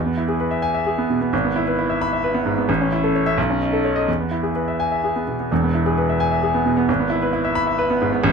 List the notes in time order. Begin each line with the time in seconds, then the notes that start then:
Already playing: E2
0.06 B3
0.17 E4
0.28 G#4
0.40 B4
0.51 E5
0.62 G#5
0.74 E5
0.87 G#4
0.98 B3
1.10 B2
1.21 B3
1.33 G#1
1.44 B3
1.56 E4
1.67 B4
1.79 E4
1.90 E5
2.01 B5
2.13 E5
2.24 B4
2.34 B3
2.46 G#2
2.58 B3
2.69 A1
2.81 C#4
2.92 E4
3.04 A4
3.15 C#5
3.26 E5
3.38 B1
3.50 C#4
3.61 D#4
3.73 A4
3.85 C#5
3.96 D#5
4.08 E2
4.20 B3
4.31 E4
4.43 G#4
4.55 B4
4.68 E5
4.80 G#5
4.92 E5
5.04 G#4
5.16 B3
5.28 B2
5.40 B3
5.51 E1 E2
5.64 B3
5.75 E4
5.86 G#4
5.98 B4
6.09 E5
6.20 G#5
6.31 E5
6.43 G#4
6.55 B3
6.66 B2
6.77 B3
6.88 G#1
7.00 B3
7.10 E4
7.22 B4
7.33 E4
7.45 E5
7.55 B5
7.67 E5
7.78 B4
7.90 B3
8.02 G#2
8.12 B3
8.24 A1